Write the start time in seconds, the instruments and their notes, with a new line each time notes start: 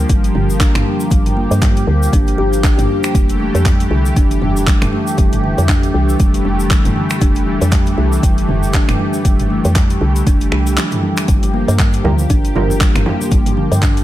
Already playing: analog synth pad F3 A#3 G4
0.09 fm bass G1, kalimba G3, kick, closed hi-hat, shaker
0.24 closed hi-hat, shaker
0.35 fm bass G1, kalimba D3, mid tom
0.50 shaker
0.60 kalimba D4, kick, clap, closed hi-hat, shaker
0.75 fm bass G1, finger snap, closed hi-hat, mid tom, shaker
0.86 kalimba G3
1.00 shaker
1.11 fm bass G1, kalimba G3, kick, closed hi-hat, shaker
1.26 closed hi-hat, mid tom, shaker
1.37 kalimba A#3
1.51 fm bass G2, closed hi-hat, shaker
1.62 kalimba G3, kick, clap, closed hi-hat, shaker
1.77 closed hi-hat, shaker
1.87 fm bass D2, kalimba D3
2.03 shaker
2.13 fm bass G1, kalimba D4, kick, closed hi-hat, shaker
2.27 closed hi-hat, shaker
2.38 fm bass G1, kalimba G4
2.53 closed hi-hat, shaker
2.64 kalimba D4, kick, clap, closed hi-hat, shaker
2.78 fm bass G1, kalimba A#3, closed hi-hat, mid tom, shaker
2.89 kalimba G3
3.04 finger snap, closed hi-hat, shaker
3.15 fm bass F1, analog synth pad E3 A3, kalimba G3, kick, closed hi-hat, shaker
3.29 closed hi-hat, shaker
3.40 kalimba A3
3.55 fm bass F2, closed hi-hat, shaker
3.65 kalimba G3, kick, clap, closed hi-hat, shaker
3.80 closed hi-hat, shaker
3.91 fm bass C2, kalimba D3
4.05 shaker
4.16 fm bass F1, kalimba D4, kick, closed hi-hat, shaker
4.31 closed hi-hat, shaker
4.42 fm bass F1, kalimba G3, mid tom
4.57 shaker
4.67 kalimba G3, kick, clap, closed hi-hat, shaker
4.82 fm bass F1, finger snap, closed hi-hat, mid tom, shaker
4.93 kalimba A3
5.07 shaker
5.18 fm bass F1, kalimba G3, kick, closed hi-hat, shaker
5.32 closed hi-hat, mid tom, shaker
5.44 kalimba D3
5.58 fm bass F2, closed hi-hat, shaker
5.69 kalimba D4, kick, clap, closed hi-hat, shaker
5.83 closed hi-hat, shaker
5.94 fm bass C2, kalimba G3
6.09 shaker
6.20 fm bass F1, kalimba G3, kick, closed hi-hat, shaker
6.34 closed hi-hat, shaker
6.45 fm bass F1, kalimba A3
6.60 shaker
6.70 kalimba G3, kick, clap, closed hi-hat, shaker
6.85 fm bass F1, closed hi-hat, mid tom, shaker
6.96 kalimba D3
7.10 finger snap, shaker
7.21 fm bass F1, kalimba D4, kick, closed hi-hat, shaker
7.35 closed hi-hat, shaker
7.47 kalimba G3
7.61 fm bass F2, closed hi-hat, shaker
7.72 kalimba G3, kick, clap, closed hi-hat, shaker
7.86 closed hi-hat, shaker
7.98 fm bass C2, kalimba A3
8.12 shaker
8.23 fm bass F1, kalimba G3, kick, closed hi-hat, shaker
8.38 closed hi-hat, shaker
8.49 fm bass F1, kalimba D3, mid tom
8.63 shaker
8.73 kalimba D4, kick, clap, closed hi-hat, shaker
8.88 fm bass F1, finger snap, closed hi-hat, mid tom, shaker
8.99 kalimba G3
9.13 shaker
9.25 fm bass F1, kalimba G3, kick, closed hi-hat, shaker
9.39 closed hi-hat, mid tom, shaker
9.50 kalimba A3
9.65 fm bass F2, closed hi-hat, shaker
9.76 kalimba G3, kick, clap, closed hi-hat, shaker
9.90 closed hi-hat, shaker
10.01 fm bass C2, kalimba D3
10.16 closed hi-hat, shaker
10.26 fm bass F1, kalimba D4, kick, closed hi-hat, shaker
10.41 closed hi-hat, shaker
10.52 fm bass C2, kalimba G3, finger snap
10.67 closed hi-hat, shaker
10.77 kalimba F3, clap, closed hi-hat, shaker
10.91 closed hi-hat, mid tom, shaker
11.03 kalimba G3
11.17 finger snap, shaker
11.28 fm bass G1, analog synth pad F3 A#3 G4, kalimba G3, kick, closed hi-hat, high conga, shaker
11.43 closed hi-hat, muted conga, shaker
11.54 kalimba A#3
11.68 fm bass G2, closed hi-hat, shaker
11.79 kalimba G3, kick, clap, closed hi-hat, muted conga, shaker
11.93 closed hi-hat, shaker
12.04 fm bass D2, kalimba D3, synth stab G3 F4 A#4, muted conga, high conga, low conga
12.19 high conga, shaker
12.30 fm bass G1, kalimba D4, kick, closed hi-hat, muted conga, shaker
12.45 closed hi-hat, shaker
12.55 fm bass G1, synth stab G3 F4 A#4, kalimba G3, mid tom, high conga, low conga
12.70 muted conga, shaker
12.81 kalimba G3, kick, clap, closed hi-hat, shaker
12.95 fm bass G1, finger snap, closed hi-hat, mid tom, muted conga, shaker
13.06 kalimba A#3, low conga
13.21 muted conga, shaker
13.31 fm bass G1, kalimba G3, kick, closed hi-hat, high conga, shaker
13.46 closed hi-hat, mid tom, muted conga, shaker
13.57 kalimba D3
13.71 fm bass G2, closed hi-hat, shaker
13.82 kalimba D4, kick, clap, closed hi-hat, muted conga, shaker
13.97 closed hi-hat, shaker